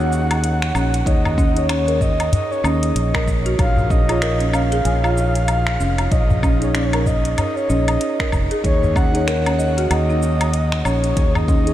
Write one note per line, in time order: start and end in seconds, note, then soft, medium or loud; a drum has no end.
0.00 0.71 D#2 medium
0.00 0.60 D#4 medium
0.00 1.05 D#4 loud
0.00 1.06 G#4 medium
0.00 1.07 C#5 loud
0.00 1.08 F#5 loud
0.12 shaker medium
0.31 closed hi-hat soft
0.31 low woodblock medium
0.31 shaker soft
0.44 closed hi-hat medium
0.44 shaker soft
0.62 finger snap medium
0.62 shaker soft
0.75 1.02 A#1 medium
0.75 0.85 C#4 medium
0.75 low woodblock medium
0.75 shaker medium
0.94 closed hi-hat soft
0.94 shaker soft
1.05 2.29 D#2 medium
1.05 1.52 D#4 medium
1.05 1.52 G#4 medium
1.05 1.37 C#5 loud
1.05 1.53 C#5 medium
1.05 1.72 D#5 loud
1.05 kick loud
1.05 closed hi-hat medium
1.05 shaker soft
1.25 udu medium
1.25 low woodblock medium
1.25 shaker soft
1.38 1.68 C#4 loud
1.38 kick loud
1.38 shaker medium
1.54 3.55 D#4 loud
1.54 3.56 G#4 medium
1.54 3.57 C#5 loud
1.54 closed hi-hat soft
1.54 shaker soft
1.69 1.80 C#4 medium
1.69 2.01 C#5 medium
1.69 finger snap medium
1.69 closed hi-hat medium
1.69 low woodblock medium
1.69 shaker soft
1.88 2.00 A#4 medium
1.88 closed hi-hat soft
1.88 shaker soft
2.01 2.31 D#5 medium
2.01 kick medium
2.01 udu medium
2.01 shaker medium
2.20 closed hi-hat soft
2.20 low woodblock medium
2.20 shaker soft
2.33 2.63 C#5 medium
2.33 2.53 D#5 loud
2.33 closed hi-hat medium
2.33 udu medium
2.33 shaker soft
2.51 2.66 C#5 medium
2.51 shaker soft
2.64 2.91 D#2 medium
2.64 3.13 C#4 loud
2.64 3.28 D#5 medium
2.64 low woodblock medium
2.64 shaker medium
2.83 closed hi-hat soft
2.83 shaker soft
2.95 3.55 A#1 medium
2.95 closed hi-hat medium
2.95 shaker soft
3.14 3.27 A#4 medium
3.14 finger snap medium
3.14 kick loud
3.14 low woodblock medium
3.14 shaker soft
3.27 kick medium
3.27 shaker medium
3.46 3.59 F#4 loud
3.46 closed hi-hat soft
3.46 shaker soft
3.58 4.82 A#1 medium
3.58 4.04 D#4 medium
3.58 4.05 G#4 medium
3.58 4.05 C#5 medium
3.58 3.92 F5 loud
3.58 kick loud
3.58 closed hi-hat soft
3.58 low woodblock medium
3.58 shaker soft
3.77 udu medium
3.77 shaker soft
3.90 4.08 C#4 medium
3.90 4.56 D#5 loud
3.90 kick loud
3.90 shaker medium
4.07 6.08 D#4 loud
4.07 4.21 F4 loud
4.07 6.09 G#4 medium
4.07 6.10 C#5 loud
4.07 closed hi-hat soft
4.07 low woodblock medium
4.07 shaker soft
4.22 4.39 A#4 loud
4.22 finger snap medium
4.22 closed hi-hat medium
4.22 shaker soft
4.40 4.52 C#4 medium
4.40 closed hi-hat soft
4.40 shaker soft
4.53 4.64 C#4 medium
4.53 6.13 F5 loud
4.53 low woodblock medium
4.53 shaker medium
4.72 4.84 G#4 loud
4.72 closed hi-hat soft
4.72 shaker soft
4.85 5.76 A#1 medium
4.85 4.96 G#5 medium
4.85 closed hi-hat medium
4.85 shaker soft
5.04 5.65 F4 medium
5.04 low woodblock medium
5.04 shaker soft
5.18 shaker medium
5.35 closed hi-hat soft
5.35 shaker soft
5.48 closed hi-hat medium
5.48 low woodblock medium
5.48 shaker soft
5.67 finger snap medium
5.67 shaker soft
5.80 6.07 F1 medium
5.80 5.91 C#4 medium
5.80 shaker medium
5.98 closed hi-hat soft
5.98 low woodblock medium
5.98 shaker soft
6.11 7.34 A#1 loud
6.11 6.57 D#4 medium
6.11 6.57 G#4 medium
6.11 6.42 C#5 loud
6.11 6.58 C#5 medium
6.11 6.76 D#5 loud
6.11 kick loud
6.11 closed hi-hat medium
6.11 shaker soft
6.30 udu loud
6.30 shaker soft
6.43 6.73 C#4 loud
6.43 kick loud
6.43 low woodblock medium
6.43 shaker medium
6.60 8.60 D#4 loud
6.60 8.61 G#4 medium
6.60 8.62 C#5 loud
6.60 closed hi-hat soft
6.60 shaker soft
6.74 6.86 C#4 medium
6.74 7.08 C#5 medium
6.74 finger snap medium
6.74 closed hi-hat medium
6.74 shaker soft
6.93 7.06 A#4 medium
6.93 closed hi-hat soft
6.93 low woodblock medium
6.93 shaker soft
7.06 7.36 D#5 medium
7.06 kick medium
7.06 udu medium
7.06 shaker medium
7.25 closed hi-hat soft
7.25 shaker soft
7.37 7.68 C#5 medium
7.37 7.55 D#5 medium
7.37 closed hi-hat medium
7.37 udu medium
7.37 low woodblock medium
7.37 shaker soft
7.56 7.71 C#5 medium
7.56 shaker soft
7.69 7.96 A#1 medium
7.69 8.18 C#4 loud
7.69 8.33 D#5 medium
7.69 shaker medium
7.88 closed hi-hat soft
7.88 low woodblock medium
7.88 shaker soft
8.01 closed hi-hat soft
8.01 shaker soft
8.20 8.32 A#4 medium
8.20 finger snap medium
8.20 kick loud
8.20 shaker soft
8.32 8.48 F1 medium
8.32 kick medium
8.32 low woodblock medium
8.32 shaker medium
8.51 8.64 G#4 loud
8.51 closed hi-hat soft
8.51 shaker soft
8.64 9.87 D#2 medium
8.64 9.10 D#4 medium
8.64 9.10 G#4 medium
8.64 8.97 C#5 loud
8.64 9.11 C#5 medium
8.64 kick loud
8.64 closed hi-hat medium
8.64 shaker soft
8.83 udu medium
8.83 shaker soft
8.96 9.13 C#4 medium
8.96 9.26 F#5 loud
8.96 kick loud
8.96 low woodblock medium
8.96 shaker medium
9.12 11.13 D#4 medium
9.12 9.26 D#4 medium
9.12 11.14 G#4 medium
9.12 closed hi-hat soft
9.12 shaker soft
9.16 11.15 C#5 loud
9.27 9.44 A#4 loud
9.27 9.86 F#5 loud
9.27 finger snap medium
9.27 closed hi-hat medium
9.27 shaker soft
9.46 9.58 C#4 medium
9.46 closed hi-hat soft
9.46 low woodblock medium
9.46 shaker soft
9.59 9.76 D#5 medium
9.59 shaker medium
9.78 9.89 F#4 loud
9.78 closed hi-hat soft
9.78 shaker soft
9.90 10.81 D#2 medium
9.90 10.87 D#5 loud
9.90 10.01 F#5 medium
9.90 closed hi-hat medium
9.90 low woodblock medium
9.90 shaker soft
10.09 10.71 D#4 medium
10.09 shaker soft
10.23 shaker medium
10.41 closed hi-hat soft
10.41 low woodblock medium
10.41 shaker soft
10.54 closed hi-hat medium
10.54 shaker soft
10.72 finger snap medium
10.72 shaker soft
10.85 11.12 A#1 medium
10.85 10.96 C#4 medium
10.85 11.37 C#5 medium
10.85 low woodblock medium
10.85 shaker medium
11.04 closed hi-hat soft
11.04 shaker soft
11.16 11.74 D#2 medium
11.16 11.62 D#4 medium
11.16 11.63 G#4 medium
11.16 11.47 C#5 loud
11.16 11.63 C#5 medium
11.16 kick loud
11.16 closed hi-hat medium
11.16 shaker soft
11.35 11.74 D#5 loud
11.35 udu medium
11.35 low woodblock medium
11.35 shaker soft
11.48 11.74 C#4 medium
11.48 kick loud
11.48 shaker medium
11.65 11.74 D#4 medium
11.65 11.74 G#4 medium
11.65 closed hi-hat soft
11.65 shaker soft
11.69 11.74 C#5 loud